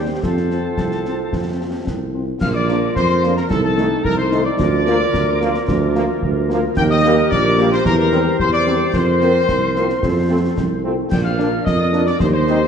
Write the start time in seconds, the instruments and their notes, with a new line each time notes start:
Already playing: tuba D#2, trombone section G3 C4, woodwind section G4 C5, trumpet section G4, piccolo G5
0.22 tuba F2, trombone section F3 C4, woodwind section F4 C5, trumpet section A4, piccolo A5, concert bass drum, snare
0.37 snare
0.51 french horn section C4 F4, snare
0.77 tuba C2, concert bass drum, snare
0.91 snare
1.05 french horn section C4 F4, snare
1.33 tuba F2, concert bass drum, snare
1.60 french horn section C4 F4
1.87 tuba C2, concert bass drum, snare
2.14 french horn section C4 F4
2.41 tuba A#1, woodwind section F4 A#4, trumpet section F5, piccolo F6, concert bass drum, snare, crash
2.54 trumpet section D5, piccolo D6
2.68 trombone section F3 A#3, french horn section A#3 D4 F4, snare
2.95 tuba F2, trumpet section C5, piccolo C6, concert bass drum, snare
3.23 trombone section F3 A#3, french horn section A#3 D4 F4, snare
3.36 trumpet section A#4, piccolo A#5, snare
3.49 tuba C2, woodwind section D#4 A4, trumpet section A4, piccolo A5, concert bass drum, snare
3.63 trumpet section A4, piccolo A5
3.77 trombone section D#3 A3, french horn section A3 D#4, snare
4.04 tuba C2, trumpet section A#4, piccolo A#5, concert bass drum
4.18 trumpet section C5, piccolo C6
4.32 trombone section D#3 A3, french horn section A3 D#4, snare
4.45 trumpet section D5, piccolo D6
4.58 tuba D2, woodwind section F4 A#4, concert bass drum, snare, crash
4.86 trombone section F3 A#3, french horn section A#3 F4 A#4, snare
5.13 tuba D2, concert bass drum, snare
5.41 trombone section F3 A#3, french horn section A#3 F4 A#4, snare
5.55 snare
5.68 tuba D2, concert bass drum, snare
5.95 trombone section F3 A#3, french horn section A#3 F4 A#4, snare
6.22 tuba D2, concert bass drum
6.49 trombone section F3 A#3, french horn section A#3 F4 A#4, snare
6.76 tuba D#2, woodwind section G4 A#4, trumpet section G5, piccolo G6, concert bass drum, snare, crash
6.90 trumpet section D#5, piccolo D#6
7.04 trombone section G3 A#3, french horn section A#3 G4 A#4, snare
7.30 tuba A#1, trumpet section D5, piccolo D6, concert bass drum, snare
7.58 trombone section G3 A#3, french horn section A#3 G4 A#4, snare
7.72 trumpet section C5, piccolo C6, snare
7.84 tuba E2, trumpet section A#4, woodwind section C5, piccolo A#5, concert bass drum, snare
7.98 trumpet section A#4, piccolo A#5
8.12 trombone section G3 C4, french horn section C4 G4 A#4, snare
8.39 tuba E2, trumpet section C5, piccolo C6, concert bass drum
8.52 trumpet section D5, piccolo D6
8.66 trombone section G3 C4, french horn section C4 G4 A#4, snare
8.93 tuba F2, woodwind section A#4, trumpet section C5, piccolo C6, concert bass drum, snare, crash
9.21 trombone section A#3 C4, french horn section C4 F4 A#4, snare
9.48 tuba C2, concert bass drum, snare
9.75 trombone section A#3 C4, french horn section C4 F4 A#4, snare
9.90 snare
10.02 tuba F2, woodwind section A4 C5, concert bass drum, snare
10.30 trombone section A3 C4, french horn section C4 F4 A4
10.57 tuba C2, concert bass drum, snare
10.84 trombone section A3 C4, french horn section C4 F4 A4
11.10 tuba A#1, woodwind section A#4 D5, trumpet section G5, piccolo G6, concert bass drum, snare, crash
11.23 trumpet section F5, piccolo F6
11.38 trombone section A#3 D4, french horn section D4 F4 A#4, snare
11.65 tuba F2, trumpet section D#5, piccolo D#6, concert bass drum, snare
11.93 trombone section A#3 D4, french horn section D4 F4 A#4, snare
12.06 trumpet section D5, piccolo D6, snare
12.20 tuba D#2, woodwind section G4 D#5, trumpet section C5, piccolo C6, concert bass drum, snare
12.32 trumpet section C5, piccolo C6
12.47 trombone section G3 D#4, french horn section C4 D#4 G4, snare